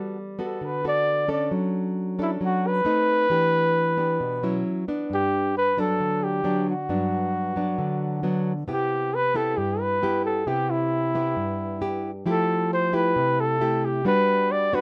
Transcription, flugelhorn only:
0.44 0.67 A4 medium
0.65 0.86 B4 medium
0.88 1.28 D5 loud
1.32 1.51 D5 medium
2.22 2.31 E4 medium
2.45 2.69 F#4 medium
2.67 4.67 B4 loud
5.14 5.54 G4 medium
5.57 5.81 B4 loud
5.80 6.25 A4 medium
6.24 6.67 G4 medium
6.70 8.43 F#4 medium
8.70 9.16 G4 medium
9.15 9.38 B4 loud
9.36 9.59 A4 medium
9.57 9.82 G4 medium
9.81 10.25 B4 loud
10.25 10.49 A4 medium
10.48 10.72 G4 medium
10.70 12.04 E4 medium
12.29 12.69 A4 medium
12.73 12.97 C5 medium
12.95 13.42 B4 medium
13.41 13.87 A4 medium
13.85 14.06 G4 medium
14.07 14.53 B4 loud
14.52 14.76 D5 loud
14.75 14.81 B4 medium

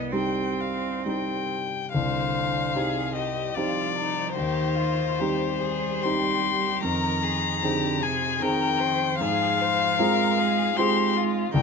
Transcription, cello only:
0.00 0.14 B3 soft
0.12 1.51 C4 soft
1.94 2.77 D3 soft
2.75 3.56 C3 soft
3.57 4.38 F3 soft
4.36 5.21 D#3 soft
5.20 6.83 G3 soft
6.84 7.65 D#3 soft
7.63 8.03 D3 soft
8.01 8.42 C3 soft
8.40 9.20 D#3 soft
9.20 10.01 F3 soft
10.00 10.77 G#3 soft
10.77 11.52 G#3 soft
11.54 11.62 D#3 soft

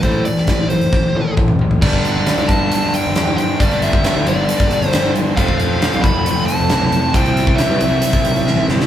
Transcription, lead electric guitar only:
0.02 0.25 C5 medium
0.25 0.69 D5 medium
0.69 1.33 C5 medium
1.82 2.03 D5 medium
2.04 2.50 D5 loud
2.48 2.94 A5 loud
2.94 3.35 G5 loud
3.37 3.60 G5 loud
3.60 3.83 D5 medium
3.83 4.28 E5 loud
4.28 4.88 D5 medium
4.88 5.12 C5 medium
5.36 5.57 F5 loud
5.58 6.04 F5 loud
6.02 6.46 B5 loud
6.46 7.15 A5 loud
7.15 7.56 G5 medium
7.57 7.80 E5 medium
7.81 8.65 E5 medium

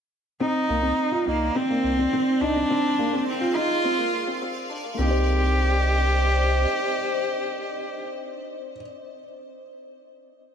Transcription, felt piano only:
0.40 0.64 C4 medium
0.69 0.81 A#3 medium
0.82 1.07 C4 medium
1.12 1.24 F4 medium
1.27 1.50 D#4 medium
1.55 1.67 C4 medium
1.70 1.94 A#3 medium
1.99 2.10 C4 medium
2.13 2.37 C4 medium
2.42 2.53 D#4 medium
2.56 2.68 C4 medium
2.70 2.94 C4 medium
2.99 3.11 A#3 medium
3.13 3.37 C4 medium
3.41 3.53 F4 medium
3.56 3.79 D#4 medium
3.85 3.96 C4 medium
3.99 4.22 A#3 medium
4.27 4.39 C4 medium
4.42 4.65 C4 medium
4.70 4.82 D4 medium
4.84 4.96 A#3 medium
4.99 8.71 C4 medium
5.03 8.75 D#4 medium
5.03 8.77 G4 medium
5.10 8.79 C5 medium

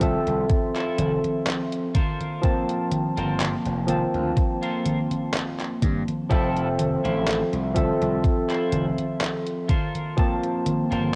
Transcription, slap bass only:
0.00 0.16 C2 medium
0.27 0.45 C2 medium
0.98 1.18 F1 medium
3.18 3.54 G1 loud
3.66 4.03 F1 medium
4.14 4.32 D2 medium
5.82 6.02 G2 loud
6.31 6.95 F1 loud
7.05 7.41 A1 loud
7.53 7.90 C2 medium
8.02 8.19 C2 medium
8.72 8.92 F1 medium
10.92 11.15 G1 loud

